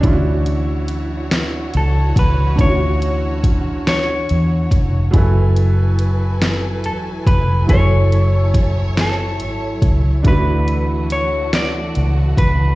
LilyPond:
<<
  \new Staff \with { instrumentName = "Clean electric guitar" } { \time 6/8 \key d \lydian \tempo 4. = 47 r2 a'8 b'8 | cis''4 r8 cis''4 r8 | r2 a'8 b'8 | cis''4 r8 a'4 r8 |
b'4 cis''8 d''4 b'8 | }
  \new Staff \with { instrumentName = "String section" } { \time 6/8 \key d \lydian << { <e e' cis''>2.~ | <e e' cis''>2. | <fis e' a' gis''>2.~ | <fis e' a' gis''>2. |
<e a>2. | } \\ { fis'2.~ | fis'2. | b'2. | cis''2. |
fis'2. | } >> }
  \new Staff \with { instrumentName = "Grand piano" } { \time 6/8 \key d \lydian <cis' d' e' eis' fis'>2. | <d cis' e' eis' fis'>2. | <fis e' a' b' gis''>2. | <fis e' a' cis'' gis''>2. |
<a d' e' fis'>2. | }
  \new Staff \with { instrumentName = "Fingered electric bass" } { \clef bass \time 6/8 \key d \lydian d,2 cis,8 cis,8 | d,2 e,8 eis,,8 | fis,,2 e,,8 eis,,8 | fis,,2 gis,,8 cis,8 |
d,2 cis,8 cis,8 | }
  \new DrumStaff \with { instrumentName = "Drums" } \drummode { \time 6/8 <hh bd>8 hh8 hh8 <hh sn>8 hh8 <hh bd>8 | <hh bd>8 hh8 <hh bd>8 <hh sn>8 hh8 <hh bd>8 | <hh bd>8 hh8 hh8 <hh sn>8 hh8 <hh bd>8 | <hh bd>8 hh8 <hh bd>8 <hh sn>8 hh8 <hh bd>8 |
<hh bd>8 hh8 hh8 <hh sn>8 hh8 <hh bd>8 | }
>>